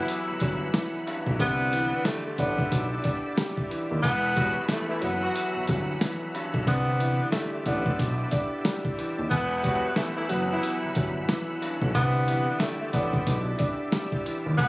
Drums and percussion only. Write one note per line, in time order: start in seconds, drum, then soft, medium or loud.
0.08 closed hi-hat loud
0.40 kick loud
0.40 closed hi-hat medium
0.74 snare loud
0.74 snare medium
0.74 closed hi-hat medium
1.07 closed hi-hat medium
1.27 kick medium
1.40 kick loud
1.40 closed hi-hat loud
1.73 closed hi-hat medium
2.05 snare loud
2.05 closed hi-hat medium
2.38 kick medium
2.38 closed hi-hat medium
2.58 kick loud
2.72 kick loud
2.72 closed hi-hat loud
3.04 kick loud
3.04 closed hi-hat medium
3.38 snare loud
3.38 closed hi-hat medium
3.57 kick medium
3.71 closed hi-hat medium
4.03 kick loud
4.03 closed hi-hat loud
4.37 kick loud
4.37 closed hi-hat medium
4.69 snare loud
4.69 closed hi-hat medium
5.02 closed hi-hat medium
5.36 closed hi-hat loud
5.67 kick loud
5.67 closed hi-hat medium
6.01 snare loud
6.01 closed hi-hat medium
6.35 closed hi-hat medium
6.54 kick medium
6.67 kick loud
6.67 closed hi-hat loud
7.00 closed hi-hat medium
7.32 snare loud
7.32 closed hi-hat medium
7.66 kick medium
7.66 closed hi-hat medium
7.86 kick loud
7.99 kick loud
7.99 closed hi-hat loud
8.31 kick loud
8.31 closed hi-hat medium
8.65 snare loud
8.65 snare medium
8.65 closed hi-hat medium
8.85 kick medium
8.99 closed hi-hat medium
9.31 kick loud
9.31 closed hi-hat loud
9.64 kick loud
9.64 closed hi-hat medium
9.96 snare loud
9.96 closed hi-hat medium
10.29 closed hi-hat medium
10.63 closed hi-hat loud
10.95 kick loud
10.95 closed hi-hat medium
11.29 snare loud
11.29 closed hi-hat medium
11.62 closed hi-hat medium
11.82 kick loud
11.95 kick loud
11.95 closed hi-hat loud
12.28 closed hi-hat medium
12.60 snare loud
12.60 closed hi-hat medium
12.93 kick medium
12.93 closed hi-hat medium
13.13 kick loud
13.27 kick loud
13.27 closed hi-hat loud
13.59 kick loud
13.59 closed hi-hat medium
13.92 snare loud
13.92 closed hi-hat medium
14.12 kick medium
14.26 closed hi-hat medium
14.58 kick loud
14.58 closed hi-hat loud